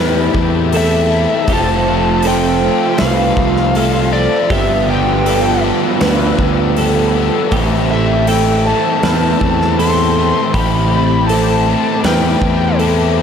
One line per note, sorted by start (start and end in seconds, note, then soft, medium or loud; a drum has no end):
0.00 0.28 E2 loud
0.00 0.73 A2 medium
0.00 1.49 A2 medium
0.00 0.73 E3 medium
0.00 1.48 E3 medium
0.00 0.37 A3 medium
0.00 1.48 A3 medium
0.00 0.36 C4 loud
0.00 1.49 C4 medium
0.00 0.34 E4 loud
0.00 1.50 E4 medium
0.00 1.45 G4 medium
0.00 0.73 B4 medium
0.00 1.45 E5 medium
0.00 1.45 G5 medium
0.00 4.47 A5 medium
0.35 1.25 E2 medium
0.35 0.74 A3 medium
0.35 0.74 C4 medium
0.35 0.76 E4 medium
0.35 kick medium
0.72 1.51 E3 medium
0.72 1.13 A3 medium
0.72 1.11 C4 medium
0.72 1.10 E4 medium
0.72 1.49 A4 medium
0.72 open hi-hat soft
0.77 1.53 E5 medium
1.11 1.52 A3 medium
1.11 1.47 C4 medium
1.11 1.53 E4 medium
1.48 2.68 F1 medium
1.48 2.25 F2 medium
1.48 2.26 C3 medium
1.48 1.91 F3 medium
1.48 4.48 C4 medium
1.48 7.49 F4 medium
1.48 2.25 G4 medium
1.48 10.50 E6 medium
1.48 kick medium
1.48 open hi-hat soft
1.52 1.90 A3 medium
1.52 1.88 C4 loud
1.52 1.87 F4 medium
1.52 2.27 A5 medium
1.88 2.25 F3 medium
1.88 2.27 A3 medium
1.88 2.27 C4 medium
1.88 2.28 F4 medium
2.22 2.67 F3 medium
2.22 3.00 A4 medium
2.22 open hi-hat medium
2.27 2.66 A3 medium
2.27 2.64 C4 medium
2.27 2.63 F4 medium
2.27 3.04 G5 medium
2.64 3.02 F3 medium
2.64 3.03 A3 medium
2.64 3.02 C4 medium
2.64 3.03 F4 medium
2.98 3.31 C2 loud
2.98 3.76 F2 medium
2.98 3.77 C3 medium
2.98 3.76 B4 medium
2.98 4.12 F5 medium
2.98 snare loud
2.98 open hi-hat medium
3.03 3.40 F3 medium
3.03 3.39 A3 medium
3.03 3.38 C4 medium
3.03 3.37 F4 loud
3.37 4.27 C2 medium
3.37 3.77 A3 medium
3.37 3.77 C4 medium
3.37 3.78 F4 medium
3.37 kick medium
3.41 3.75 F3 medium
3.56 snare soft
3.75 4.14 F3 medium
3.75 4.14 A3 medium
3.75 4.12 C4 medium
3.75 4.50 A4 medium
3.75 open hi-hat medium
3.79 4.11 F4 medium
4.12 4.50 F3 medium
4.12 4.52 A3 medium
4.12 4.49 C4 medium
4.12 4.48 F4 medium
4.12 4.52 D5 medium
4.50 5.71 G1 medium
4.50 5.26 G2 medium
4.50 5.27 D3 medium
4.50 4.91 F3 medium
4.50 4.91 G3 medium
4.50 4.89 B3 medium
4.50 7.54 F4 medium
4.50 5.26 G4 medium
4.50 7.50 B4 medium
4.50 4.91 E5 medium
4.50 13.22 A5 medium
4.50 kick loud
4.50 open hi-hat soft
4.54 4.88 G4 medium
4.88 5.25 F3 medium
4.88 5.26 G3 medium
4.88 5.27 B3 medium
4.88 5.29 G4 medium
4.88 5.62 G5 medium
5.26 5.66 F3 medium
5.26 5.65 G3 medium
5.26 5.64 B3 medium
5.26 5.64 G4 medium
5.26 6.00 A4 medium
5.26 open hi-hat medium
5.64 6.02 F3 medium
5.64 6.04 G3 medium
5.64 6.03 B3 medium
5.64 6.04 G4 medium
6.01 6.32 D2 medium
6.01 6.77 G2 medium
6.01 6.78 D3 medium
6.01 6.42 F3 medium
6.01 6.41 G3 loud
6.01 6.77 B4 medium
6.01 snare loud
6.01 open hi-hat medium
6.05 6.40 B3 medium
6.05 6.39 G4 loud
6.39 7.29 D2 medium
6.39 6.78 G3 medium
6.39 6.79 B3 medium
6.39 6.80 G4 medium
6.39 kick medium
6.43 6.76 F3 medium
6.76 7.17 F3 medium
6.76 7.17 G3 medium
6.76 7.15 B3 medium
6.76 7.15 G4 medium
6.76 7.52 A4 medium
6.76 open hi-hat medium
7.15 7.52 F3 medium
7.15 7.53 G3 medium
7.15 7.52 B3 medium
7.15 7.55 G4 medium
7.51 8.72 A1 medium
7.51 9.04 A2 medium
7.51 8.28 E3 medium
7.51 7.93 A3 medium
7.51 13.22 C4 medium
7.51 7.92 C4 medium
7.51 8.28 G4 medium
7.51 13.22 G5 medium
7.51 kick medium
7.51 open hi-hat soft
7.55 7.90 E4 medium
7.90 8.29 A3 medium
7.90 8.30 C4 medium
7.90 8.32 E4 medium
7.90 8.28 E5 medium
8.27 9.05 E3 medium
8.27 8.69 A3 medium
8.27 8.68 C4 medium
8.27 9.04 A4 medium
8.27 8.67 G5 medium
8.27 open hi-hat medium
8.32 8.66 E4 medium
8.66 9.06 A3 medium
8.66 9.06 C4 medium
8.66 9.07 E4 medium
8.66 9.79 A5 medium
9.03 9.34 E2 loud
9.03 9.79 A2 medium
9.03 9.80 E3 medium
9.03 9.45 A3 medium
9.03 9.43 C4 loud
9.03 9.79 B4 medium
9.03 snare loud
9.03 open hi-hat medium
9.08 9.41 E4 medium
9.41 10.31 E2 medium
9.41 9.82 C4 medium
9.41 9.83 E4 medium
9.41 kick medium
9.45 9.81 A3 medium
9.61 snare soft
9.79 10.55 E3 medium
9.79 10.21 A3 medium
9.79 10.19 C4 medium
9.79 10.17 E4 medium
9.79 10.54 A4 medium
9.79 10.54 C6 loud
9.79 open hi-hat medium
10.17 10.55 A3 medium
10.17 10.57 C4 medium
10.17 10.58 E4 medium
10.54 11.74 A1 medium
10.54 11.29 A2 medium
10.54 11.29 E3 medium
10.54 10.94 A3 medium
10.54 10.93 C4 medium
10.54 11.29 G4 medium
10.54 11.27 B5 medium
10.54 13.22 D6 medium
10.54 kick loud
10.54 open hi-hat medium
10.58 10.91 E4 loud
10.92 11.30 A3 medium
10.92 11.32 C4 medium
10.92 11.33 E4 medium
11.27 12.05 E3 medium
11.27 11.70 A3 medium
11.27 12.03 A4 medium
11.27 12.06 A5 medium
11.27 open hi-hat medium
11.32 11.69 C4 medium
11.32 11.67 E4 medium
11.68 12.06 A3 medium
11.68 12.06 C4 medium
11.68 12.07 E4 medium
12.04 12.35 E2 loud
12.04 12.80 A2 medium
12.04 12.79 E3 medium
12.04 12.45 A3 loud
12.04 12.43 C4 loud
12.04 12.42 E4 medium
12.04 12.79 B4 medium
12.04 12.76 G5 medium
12.04 snare loud
12.04 open hi-hat medium
12.42 13.22 E2 medium
12.42 12.81 C4 medium
12.42 12.83 E4 medium
12.42 kick medium
12.46 12.81 A3 medium
12.79 13.22 E3 medium
12.79 13.21 A3 medium
12.79 13.19 C4 medium
12.79 13.22 A4 medium
12.79 open hi-hat medium
12.83 13.17 E4 medium
13.18 13.22 E4 medium